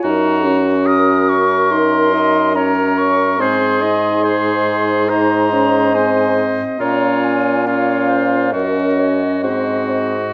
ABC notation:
X:1
M:4/4
L:1/8
Q:1/4=70
K:Abmix
V:1 name="Flute"
b z e' d' c'2 b d' | c'4 b2 a z | b a f2 e3 c |]
V:2 name="Clarinet"
B G3 B e d z | c e c2 e4 | d2 d c B d c e |]
V:3 name="Oboe"
G2 B4 B2 | A2 A2 c2 c2 | F2 F2 G2 G2 |]
V:4 name="French horn"
E D2 z E E D2 | C E3 E D C2 | D2 D2 D2 C2 |]
V:5 name="Bassoon" clef=bass
G,,8 | A,,8 | B,,4 G,,2 A,,2 |]